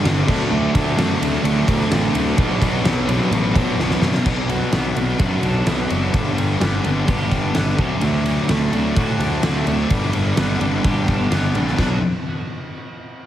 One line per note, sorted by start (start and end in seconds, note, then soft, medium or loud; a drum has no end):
0.00 0.27 G2 medium
0.00 0.26 G2 medium
0.00 0.26 D3 loud
0.00 0.28 G3 loud
0.04 0.21 G1 medium
0.04 0.26 D3 medium
0.04 0.27 G3 medium
0.04 0.27 B3 loud
0.04 0.29 D4 loud
0.04 snare loud
0.04 ride loud
0.28 0.45 D2 medium
0.28 0.49 D3 loud
0.28 0.51 F#3 loud
0.28 0.51 A3 loud
0.28 0.52 D4 loud
0.28 kick loud
0.28 crash loud
0.51 0.67 D2 loud
0.51 0.73 D3 loud
0.51 0.75 F#3 loud
0.51 0.74 A3 loud
0.51 0.76 D4 loud
0.74 0.91 D2 medium
0.74 0.96 D3 medium
0.74 0.97 F#3 medium
0.74 0.97 A3 medium
0.74 0.98 D4 loud
0.74 kick medium
0.74 ride medium
0.97 1.14 F#2 loud
0.97 1.19 D3 medium
0.97 1.21 F#3 medium
0.97 1.20 A3 medium
0.97 1.22 D4 medium
0.97 snare loud
0.97 ride loud
1.20 1.38 D2 medium
1.20 1.42 D3 loud
1.20 1.44 F#3 loud
1.20 1.44 A3 loud
1.20 1.45 D4 loud
1.20 ride medium
1.43 1.60 D2 loud
1.43 1.65 D3 medium
1.43 1.68 F#3 medium
1.43 1.67 A3 medium
1.43 1.68 D4 medium
1.43 ride loud
1.66 1.84 D2 medium
1.66 1.89 D3 loud
1.66 1.91 F#3 loud
1.66 1.90 A3 loud
1.66 1.92 D4 loud
1.66 kick medium
1.66 ride medium
1.80 snare soft
1.90 2.08 A1 medium
1.90 2.13 D3 medium
1.90 2.14 F#3 loud
1.90 2.14 A3 loud
1.90 2.15 D4 medium
1.90 snare loud
1.90 ride loud
2.14 2.31 D2 medium
2.14 2.37 D3 medium
2.14 2.38 F#3 medium
2.14 2.37 A3 loud
2.14 2.38 D4 loud
2.14 ride medium
2.37 2.54 B1 medium
2.37 2.60 B2 loud
2.37 2.61 F#3 loud
2.37 2.61 B3 loud
2.37 2.62 D4 loud
2.37 kick loud
2.37 ride loud
2.61 2.78 B1 medium
2.61 2.84 B2 medium
2.61 2.85 F#3 medium
2.61 2.85 B3 medium
2.61 2.86 D4 medium
2.61 kick medium
2.61 ride medium
2.84 3.17 B1 loud
2.84 3.07 B2 medium
2.84 3.08 F#3 medium
2.84 3.08 B3 loud
2.84 3.09 D4 loud
2.84 snare loud
2.84 ride loud
3.08 3.31 B2 loud
3.08 3.32 F#3 loud
3.08 3.32 B3 loud
3.08 3.33 D4 loud
3.08 ride medium
3.31 3.64 A1 loud
3.31 3.54 B2 medium
3.31 3.55 F#3 loud
3.31 3.55 B3 medium
3.31 3.56 D4 loud
3.31 ride loud
3.56 3.79 B2 loud
3.56 3.79 F#3 loud
3.56 3.80 B3 loud
3.56 3.80 D4 loud
3.56 kick medium
3.56 ride medium
3.79 3.95 B1 medium
3.79 4.01 B2 loud
3.79 4.02 F#3 loud
3.79 4.03 B3 loud
3.79 4.03 D4 medium
3.79 snare medium
3.90 snare medium
4.01 4.18 F#2 medium
4.01 4.25 B2 medium
4.01 4.25 F#3 loud
4.01 4.25 B3 loud
4.01 4.26 D4 loud
4.01 snare loud
4.14 snare loud
4.26 4.61 B1 medium
4.26 4.71 B2 medium
4.26 4.72 F#3 loud
4.26 4.73 B3 loud
4.26 4.74 D4 loud
4.26 kick loud
4.26 crash loud
4.49 5.67 F#3 medium
4.49 ride medium
4.72 4.90 B1 medium
4.72 4.94 B2 medium
4.72 4.95 F#3 medium
4.72 4.95 B3 medium
4.72 4.96 D4 medium
4.72 snare loud
4.72 ride loud
4.95 5.14 B1 medium
4.95 5.18 B2 medium
4.95 5.18 F#3 medium
4.95 5.20 B3 medium
4.95 5.20 D4 loud
4.95 ride medium
5.19 5.37 F#2 medium
5.19 5.65 B2 loud
5.19 5.66 F#3 medium
5.19 5.66 B3 medium
5.19 5.68 D4 loud
5.19 6.14 F#4 medium
5.19 kick loud
5.19 ride loud
5.42 5.60 B1 medium
5.42 5.89 D4 medium
5.42 ride medium
5.66 5.84 B1 medium
5.66 5.87 B2 medium
5.66 5.88 F#3 medium
5.66 5.89 B3 medium
5.66 5.90 D4 medium
5.66 snare loud
5.66 ride medium
5.88 6.08 F#1 medium
5.88 6.12 B2 medium
5.88 6.12 F#3 medium
5.88 6.12 B3 medium
5.88 6.14 D4 medium
5.88 ride medium
6.12 6.32 G1 medium
6.12 6.58 G2 medium
6.12 6.58 D3 loud
6.12 6.58 G3 loud
6.12 6.59 B3 loud
6.12 6.61 D4 loud
6.12 kick loud
6.12 ride medium
6.37 6.55 G1 medium
6.37 7.55 G3 medium
6.37 ride medium
6.59 6.79 G1 medium
6.59 6.83 G2 medium
6.59 6.83 D3 medium
6.59 6.84 G3 medium
6.59 6.84 B3 medium
6.59 6.85 D4 medium
6.59 snare loud
6.59 ride loud
6.84 7.03 G1 medium
6.84 7.04 G2 medium
6.84 7.05 D3 medium
6.84 7.06 G3 loud
6.84 7.06 B3 medium
6.84 7.07 D4 medium
6.84 ride medium
7.06 7.26 G1 medium
7.06 7.53 G2 medium
7.06 7.54 D3 medium
7.06 7.54 G3 medium
7.06 7.55 B3 medium
7.06 7.56 D4 medium
7.06 7.78 G4 medium
7.06 kick loud
7.06 ride medium
7.31 7.49 G1 medium
7.31 8.73 D4 medium
7.31 kick medium
7.31 ride medium
7.54 7.73 G1 medium
7.54 7.77 G2 medium
7.54 7.77 D3 medium
7.54 7.78 G3 medium
7.54 7.78 B3 medium
7.54 7.79 D4 loud
7.54 snare loud
7.54 ride medium
7.68 snare soft
7.78 7.96 D2 medium
7.78 8.00 D3 medium
7.78 8.01 F#3 medium
7.78 8.02 A3 loud
7.78 8.03 D4 loud
7.78 kick loud
7.78 ride medium
8.01 8.37 D2 medium
8.01 8.48 D3 medium
8.01 8.49 F#3 loud
8.01 8.49 A3 loud
8.01 8.50 D4 loud
8.01 ride medium
8.25 9.43 F#3 medium
8.25 ride medium
8.49 8.67 D2 medium
8.49 8.71 D3 medium
8.49 8.71 F#3 medium
8.49 8.72 A3 loud
8.49 8.74 D4 medium
8.49 snare loud
8.49 ride loud
8.72 8.91 D2 medium
8.72 8.95 D3 medium
8.72 8.96 F#3 medium
8.72 8.96 A3 loud
8.72 8.97 D4 medium
8.72 ride medium
8.96 9.14 A2 loud
8.96 9.41 D3 loud
8.96 9.42 F#3 medium
8.96 9.43 A3 loud
8.96 9.44 D4 loud
8.96 9.90 F#4 medium
8.96 kick loud
8.96 ride medium
9.20 9.37 D2 medium
9.20 9.67 D4 medium
9.20 ride medium
9.43 9.61 D2 medium
9.43 9.65 D3 medium
9.43 9.66 F#3 medium
9.43 9.66 A3 medium
9.43 9.67 D4 medium
9.43 snare loud
9.43 ride loud
9.66 9.84 D2 medium
9.66 9.88 D3 medium
9.66 9.89 F#3 medium
9.66 9.89 A3 medium
9.66 9.91 D4 loud
9.66 ride medium
9.89 10.08 G1 medium
9.89 10.35 G2 loud
9.89 10.35 D3 loud
9.89 10.36 G3 loud
9.89 10.36 B3 loud
9.89 10.37 D4 loud
9.89 kick loud
9.89 ride medium
10.13 10.31 G1 medium
10.13 11.31 G3 medium
10.13 ride medium
10.36 10.55 G1 loud
10.36 10.59 G2 medium
10.36 10.60 D3 medium
10.36 10.60 G3 medium
10.36 10.61 B3 loud
10.36 10.61 D4 medium
10.36 snare loud
10.36 ride loud
10.60 10.78 G1 medium
10.60 10.82 G2 medium
10.60 10.82 D3 loud
10.60 10.83 G3 medium
10.60 10.83 B3 loud
10.60 10.84 D4 loud
10.60 ride medium
10.83 11.02 G1 loud
10.83 11.29 G2 loud
10.83 11.30 D3 medium
10.83 11.31 G3 medium
10.83 11.31 B3 medium
10.83 11.32 D4 medium
10.83 11.78 G4 medium
10.83 kick loud
10.83 ride medium
11.08 11.25 G1 medium
11.08 11.55 D4 medium
11.08 kick medium
11.08 ride medium
11.31 11.49 G1 medium
11.31 11.54 G2 medium
11.31 11.53 D3 medium
11.31 11.55 G3 medium
11.31 11.55 B3 loud
11.31 11.55 D4 loud
11.31 snare loud
11.31 ride medium
11.44 snare soft
11.55 11.72 A#1 medium
11.55 11.77 G2 medium
11.55 11.76 D3 medium
11.55 11.77 G3 loud
11.55 11.76 B3 medium
11.55 11.77 D4 medium
11.55 ride medium
11.67 snare soft
11.77 12.00 B1 medium
11.77 11.96 B2 loud
11.77 11.97 F#3 loud
11.77 11.96 B3 loud
11.77 11.97 D4 loud
11.77 11.98 F#4 loud
11.77 kick medium
11.77 snare loud
11.77 splash medium